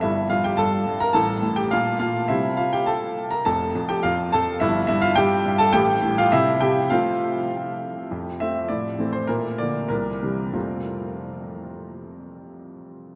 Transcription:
<<
  \new Staff \with { instrumentName = "Grand piano" } { \time 2/4 \key f \major \tempo 4 = 102 <e' e''>8 <f' f''>16 <g' g''>16 <a' a''>8. <bes' bes''>16 | <a' a''>8. <g' g''>16 <f' f''>8 <f' f''>8 | <e' e''>8 <f' f''>16 <g' g''>16 <a' a''>8. <bes' bes''>16 | <a' a''>8. <g' g''>16 <f' f''>8 <a' a''>8 |
<e' e''>8 <e' e''>16 <f' f''>16 <g' g''>8. <a' a''>16 | <g' g''>8. <f' f''>16 <e' e''>8 <g' g''>8 | <f' f''>4 r4 | r8 e''8 d''8. c''16 |
bes'8 d''8 bes'4 | <f, c a c' f'>2~ | <f, c a c' f'>2 | }
  \new Staff \with { instrumentName = "Grand piano" } { \clef bass \time 2/4 \key f \major <g,, g,>8 g,8 g,8 g,8 | <a,, a,>8 a,8 bes,8 bes,8 | <c g c'>4 r4 | <f,, f,>8 f,8 f,8 f,8 |
<g,, g,>8 g,8 g,8 g,8 | <a,, a,>8 a,8 c8 c8 | <f a c'>4 r4 | f,8 <f a c'>8 a,8 <e a c'>8 |
bes,8 <d f bes>8 c,8 <c e g>8 | r2 | r2 | }
>>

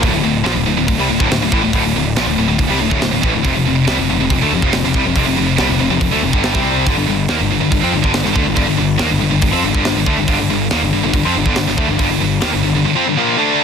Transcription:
<<
  \new Staff \with { instrumentName = "Distorted electric guitar" } { \clef bass \time 4/4 \key d \minor \tempo 4 = 140 <d, a,>16 <d, a,>16 <d, a,>8 <bes, f>16 <d, a,>16 <d, a,>16 <d, a,>16 <d, a,>16 <c g>16 <d, a,>16 <d, a,>16 <d, a,>16 <d, a,>16 <a, e>16 <d, a,>16 | <d, a,>16 <d, a,>16 <d, a,>8 <bes, f>16 <d, a,>16 <d, a,>16 <d, a,>16 <d, a,>16 <c g>16 <d, a,>16 <d, a,>16 <d, a,>16 <d, a,>16 <a, e>16 <d, a,>16 | <f, c>16 <f, c>16 <f, c>8 <c g>16 <f, c>16 <f, c>16 <f, c>16 <f, c>16 <d a>16 <f, c>16 <f, c>16 <f, c>16 <f, c>16 <c g>16 <f, c>16 | <f, c>16 <f, c>16 <f, c>8 <c g>16 <f, c>16 <f, c>16 <f, c>16 <f, c>16 <d a>16 <f, c>16 <g, d g>8 <c g c'>8. |
<g, d>16 <g, d>16 <g, d>8 <ees bes>16 <g, d>16 <g, d>16 <g, d>16 <g, d>16 <f c'>16 <g, d>16 <g, d>16 <g, d>16 <g, d>16 <d a>16 <g, d>16 | <g, d>16 <g, d>16 <g, d>8 <ees bes>16 <g, d>16 <g, d>16 <g, d>16 <g, d>16 <f c'>16 <g, d>16 <g, d>16 <g, d>16 <g, d>16 <d a>16 <g, d>16 | <g, d>16 <g, d>16 <g, d>8 <ees bes>16 <g, d>16 <g, d>16 <g, d>16 <g, d>16 <f c'>16 <g, d>16 <g, d>16 <g, d>16 <g, d>16 <d a>16 <g, d>16 | <g, d>16 <g, d>16 <g, d>8 <ees bes>16 <g, d>16 <g, d>16 <g, d>16 <g, d>16 <f c'>16 <g, d>16 <bes, f bes>8 <d a d'>8. | }
  \new Staff \with { instrumentName = "Distorted electric guitar" } { \clef bass \time 4/4 \key d \minor <d, a,>16 <d, a,>16 <d, a,>8 <bes, f>16 <d, a,>16 <d, a,>16 <d, a,>16 <d, a,>16 <c g>16 <d, a,>16 <d, a,>16 <d, a,>16 <d, a,>16 <a, e>16 <d, a,>16 | <d, a,>16 <d, a,>16 <d, a,>8 <bes, f>16 <d, a,>16 <d, a,>16 <d, a,>16 <d, a,>16 <c g>16 <d, a,>16 <d, a,>16 <d, a,>16 <d, a,>16 <a, e>16 <d, a,>16 | <f, c>16 <f, c>16 <f, c>8 <c g>16 <f, c>16 <f, c>16 <f, c>16 <f, c>16 <d a>16 <f, c>16 <f, c>16 <f, c>16 <f, c>16 <c g>16 <f, c>16 | <f, c>16 <f, c>16 <f, c>8 <c g>16 <f, c>16 <f, c>16 <f, c>16 <f, c>16 <d a>16 <f, c>16 <g, d g>8 <c g c'>8. |
<g, d>16 <g, d>16 <g, d>8 <ees bes>16 <g, d>16 <g, d>16 <g, d>16 <g, d>16 <f c'>16 <g, d>16 <g, d>16 <g, d>16 <g, d>16 <d a>16 <g, d>16 | <g, d>16 <g, d>16 <g, d>8 <ees bes>16 <g, d>16 <g, d>16 <g, d>16 <g, d>16 <f c'>16 <g, d>16 <g, d>16 <g, d>16 <g, d>16 <d a>16 <g, d>16 | <g, d>16 <g, d>16 <g, d>8 <ees bes>16 <g, d>16 <g, d>16 <g, d>16 <g, d>16 <f c'>16 <g, d>16 <g, d>16 <g, d>16 <g, d>16 <d a>16 <g, d>16 | <g, d>16 <g, d>16 <g, d>8 <ees bes>16 <g, d>16 <g, d>16 <g, d>16 <g, d>16 <f c'>16 <g, d>16 <bes, f bes>8 <d a d'>8. | }
  \new Staff \with { instrumentName = "Picked electric bass" } { \clef bass \time 4/4 \key d \minor d,,16 d,,16 d,,8 bes,,16 d,,16 d,,16 d,,16 d,,16 c,16 d,,16 d,,16 d,,16 d,,16 a,,16 d,,16 | d,,16 d,,16 d,,8 bes,,16 d,,16 d,,16 d,,16 d,,16 c,16 d,,16 d,,16 d,,16 d,,16 a,,16 d,,16 | f,,16 f,,16 f,,8 c,16 f,,16 f,,16 f,,16 f,,16 d,16 f,,16 f,,16 f,,16 f,,16 c,16 f,,16 | f,,16 f,,16 f,,8 c,16 f,,16 f,,16 f,,16 f,,16 d,16 f,,16 g,,8 c,8. |
g,,16 g,,16 g,,8 ees,16 g,,16 g,,16 g,,16 g,,16 f,16 g,,16 g,,16 g,,16 g,,16 d,16 g,,16 | g,,16 g,,16 g,,8 ees,16 g,,16 g,,16 g,,16 g,,16 f,16 g,,16 g,,16 g,,16 g,,16 d,16 g,,16 | g,,16 g,,16 g,,8 ees,16 g,,16 g,,16 g,,16 g,,16 f,16 g,,16 g,,16 g,,16 g,,16 d,16 g,,16 | g,,16 g,,16 g,,8 ees,16 g,,16 g,,16 g,,16 r2 | }
  \new DrumStaff \with { instrumentName = "Drums" } \drummode { \time 4/4 <hho bd>4 <hho sn>4 <hho bd>8. bd16 <hho sn>8 bd8 | <hho bd>4 <hho sn>4 <hho bd>8. bd16 <hho sn>8 bd8 | <hho bd>4 <hho sn>4 <hho bd>8. bd16 <hho sn>16 sn16 bd8 | <hho bd>4 <hho sn>4 <hho bd>8. bd16 <hho sn>16 <bd sn>8. |
<hho bd>4 <hho sn>4 <hho bd>8. bd16 <hho sn>16 sn16 bd8 | <hho bd>4 <hho sn>4 <hho bd>8. bd16 <hho sn>8 bd8 | <hho bd>4 <hho sn>4 <hho bd>8. bd16 <hho sn>16 sn16 bd8 | <hho bd>4 <hho sn>4 r4 r4 | }
>>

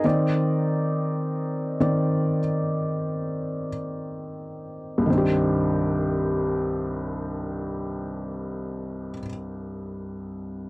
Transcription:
\new Staff \with { instrumentName = "Felt piano" } { \time 4/4 \key c \minor \tempo 4 = 42 << { <ees' ees''>2. r4 | r1 | } \\ { <ees c' d''>4. <ees c' d''>8 r2 | <c, g, ees c' d' g'>1 | } >> }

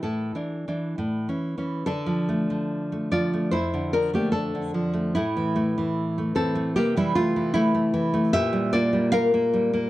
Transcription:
\new Staff \with { instrumentName = "Nylon-string guitar" } { \time 2/4 \key d \minor \tempo 4 = 74 << { <e' a'>4. r8 | <d' a'>4. <f' d''>8 | <e' c''>8 <d' bes'>16 <bes g'>16 <d' a'>4 | <a e'>4. <c' a'>8 |
<bes g'>16 <g e'>16 <a f'>8 <a e'>4 | <g' e''>8 <f' d''>8 <bes' f''>4 | } \\ { \tuplet 3/2 { a,8 <e d'>8 <e d'>8 a,8 <e cis'>8 <e cis'>8 } | d16 f16 a16 f8 a16 f16 a16 | f,16 d16 f16 a8 d16 f16 a16 | a,16 e16 a16 e8 a16 e16 a16 |
c16 e8 e8 a16 e16 a16 | bes,16 g16 bes16 g8 bes16 g16 bes16 | } >> }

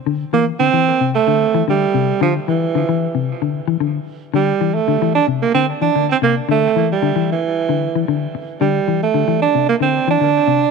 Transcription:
<<
  \new Staff \with { instrumentName = "Alto saxophone" } { \time 4/4 \key c \mixolydian \tempo 4 = 112 r8 bes8 c'4 a4 g4 | f8 e4. r2 | g8. a8. d'8 bes16 c'8 d'8 c'16 bes8 | a8. g8. e4. r4 |
g8. a8. d'8 bes16 c'8 d'4~ d'16 | }
  \new Staff \with { instrumentName = "Clean electric guitar" } { \clef bass \time 4/4 \key c \mixolydian d8 e8 d16 e8 c8 d8 e16 d8 c8 | d8 e8 d16 e8 c8 d8 e16 d8 r8 | d8 e8 d16 e8 c8 d8 e16 d8 c8 | d8 e8 d16 e8 r8 d8 e16 d8 r8 |
d8 e8 d16 e8 c8 d8 e16 d8 c8 | }
>>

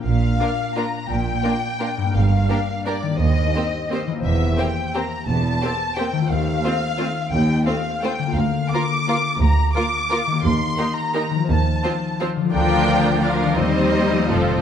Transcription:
<<
  \new Staff \with { instrumentName = "Violin section" } { \time 3/4 \key bes \major \tempo 4 = 171 f''2 bes''4 | g''2. | f''2 d''4 | ees''2~ ees''8 r8 |
e''4 g''4 bes''4 | a''2 g''4 | f''2. | g''4 f''4 g''4 |
f''4 d'''2 | bes''4 d'''2 | c'''4. bes''4. | a''2 r4 |
g''2 f''4 | ees''2 c''4 | }
  \new Staff \with { instrumentName = "Violin section" } { \time 3/4 \key bes \major r4 <f' bes'>4 <f' bes'>4 | r4 <f' bes'>4 <f' bes'>4 | r4 <g' bes'>4 <g' bes'>4 | r4 <g' c''>4 <g' c''>4 |
r4 <g' c''>4 <g' c''>4 | r4 <g' c''>4 <g' c''>4 | r4 <f' c''>4 <f' c''>4 | r4 <f' c''>4 <f' c''>4 |
r4 <f' bes'>4 <f' bes'>4 | r4 <f' bes'>4 <f' bes'>4 | r4 <g' bes'>4 <g' bes'>4 | r4 <f' c''>4 <f' c''>4 |
<f' bes'>2 <f' bes'>4 | <ees' c''>2 <f' a'>4 | }
  \new Staff \with { instrumentName = "Harp" } { \time 3/4 \key bes \major <bes, bes d' bes'>2.~ | <bes, bes d' bes'>2. | <g, bes d' bes'>2. | <ees bes g' c''>2. |
<e bes g' c''>2.~ | <e bes g' c''>2. | <ees a f' c''>2.~ | <ees a f' c''>2. |
<d bes f' bes'>2.~ | <d bes f' bes'>2. | <ees bes g' bes'>2. | <ees f f' c''>2. |
<d f f' bes'>2. | <ees g c' g'>2 <f a c' f'>4 | }
  \new Staff \with { instrumentName = "Viola section" } { \time 3/4 \key bes \major r4 <bes d'>4 <bes d'>4 | r4 <bes d'>4 <bes d'>4 | r4 <bes d'>4 <bes d'>4 | r4 <bes c'>4 <bes c'>4 |
r4 <bes c'>4 <bes c'>4 | r4 <bes c'>4 <bes c'>4 | r4 <a c'>4 <a c'>4 | r4 <a c'>4 <a c'>4 |
r4 <bes f'>4 <bes f'>4 | r4 <bes f'>4 <bes f'>4 | r4 <bes ees'>4 <bes ees'>4 | r4 <f c'>4 <f c'>4 |
<f d'>2 <f d'>4 | <g c'>2 <f c'>4 | }
  \new Staff \with { instrumentName = "Cello section" } { \clef bass \time 3/4 \key bes \major bes,4 r2 | bes,4 r2 | g,4 r2 | ees,4 r2 |
e,4 r2 | e,4 r2 | ees,4 r2 | ees,4 r2 |
d,4 r2 | d,4 r2 | ees,4 r2 | ees,4 r2 |
d,2. | ees,2 f,4 | }
  \new Staff \with { instrumentName = "Double bass section" } { \clef bass \time 3/4 \key bes \major bes,,4 r2 | bes,,4 r2 | g,,4 r2 | ees,4 r2 |
e,,4 r2 | e,,4 r2 | ees,4 r2 | ees,4 r2 |
d,4 r2 | d,4 r2 | ees,4 r2 | ees,4 r2 |
d,4 r2 | ees,4 r4 f,,4 | }
>>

